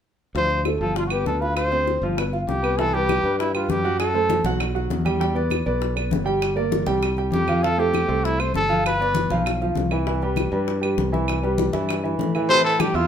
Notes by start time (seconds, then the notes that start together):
0.35 D2 F3 F4 C5, high bongo
0.50 high bongo
0.65 A3 A4, high bongo, claves
0.81 G1 F3 F4 A4
0.96 F4, high bongo
1.06 F#4
1.10 B3 G4 B4, high bongo, claves
1.26 D2 A4, high bongo, low bongo
1.41 F4 B4 F5, high bongo
1.57 C5, high bongo, claves
1.72 C4 C5, high bongo
1.87 high bongo
2.02 G1 F3 F4
2.17 B3 B4, high bongo, claves
2.33 F4 F5, high bongo
2.48 C2 G4, high bongo, low bongo
2.63 B3 B4, high bongo, claves
2.79 E3 E4 A4 E5, high bongo, high conga
2.94 G3 G4 B4, high bongo, high conga
3.09 high bongo, high conga, claves
3.24 G2 G3 G4 B4, high conga
3.39 E4, high bongo, high conga
3.54 G3 F4 G4 B4, high bongo, high conga, claves
3.68 F#2 G4, high bongo, low bongo, high conga
3.84 F#3 F#4 F#5, high bongo
4.00 A4, high bongo, high conga, claves
4.14 A3 A4 C5, high bongo, high conga
4.30 high bongo, high conga
4.44 B1 F#3 F#4 F#5, high conga
4.60 high bongo, high conga, claves
4.74 F#3 F#4 F#5, high bongo, high conga
4.90 E2, high bongo, low bongo, high conga
5.05 G3 G4 G5, high bongo, high conga, claves
5.20 G3 G4 G5, high bongo, high conga
5.35 B3 B4 D5, high bongo, high conga
5.50 high bongo, high conga, claves
5.66 B1 B3 B4 D5, high conga
5.80 high bongo, high conga
5.96 B3 B4 D5, high bongo, high conga, claves
6.11 G1, high bongo, low bongo, high conga
6.24 G3 G4 G5, high bongo
6.42 high bongo, high conga, claves
6.56 A#3 A#4 D5, high bongo, high conga
6.72 high bongo, high conga
6.86 C2 G3 G4 G5, high conga
7.02 high bongo, high conga, claves
7.17 G3 G4 G5, high bongo, high conga
7.32 F2 G4, high bongo, low bongo, high conga
7.48 F3 F4 F5, high bongo, high conga, claves
7.63 F3 F4 A4 F5, high bongo, high conga
7.77 A3 G4 A4 C5, high bongo, high conga
7.94 high bongo, high conga, claves
8.08 C2 A3 A4 C5, high conga
8.25 E4, high bongo, high conga
8.39 A3 A4 C5, high bongo, high conga, claves
8.54 G1 A4, high bongo, low bongo, high conga
8.69 F3 F4 F5, high bongo
8.85 B4, high bongo, high conga, claves
9.00 B3 B4 D5, high bongo, high conga
9.15 high bongo, high conga
9.30 B1 F3 F4 F5, high conga
9.46 high bongo, high conga, claves
9.61 F3 F4 F5, high bongo, high conga
9.75 C2, high bongo, low bongo, high conga
9.91 E3 E4 E5, high bongo, claves
10.07 E3 E4 E5, high bongo, high conga
10.22 G3 G4 B4, high bongo, high conga
10.36 high bongo, high conga, claves
10.52 G2 G3 G4 B4, high conga
10.68 high bongo, high conga
10.81 G3 G4 B4, high bongo, high conga, claves
10.98 C2, high bongo, low bongo, high conga
11.12 E3 E4 E5, high bongo, high conga
11.28 high bongo, high conga, claves
11.43 G3 G4 B4, high bongo, high conga
11.58 high bongo, high conga
11.73 G2 E3 E4 E5, high conga
11.89 high bongo, high conga, claves
12.03 E3 E4 E5, high bongo, high conga
12.19 A2, high bongo, low bongo, high conga
12.35 E3 E4 E5, high bongo, claves
12.49 C3 E3 E4 C5 E5, high bongo, high conga
12.64 A2 A4, high conga
12.79 G2 G3 G4 G5, high bongo, high conga, claves
12.94 E2 F2 E4 F4 E5 E6, high bongo, high conga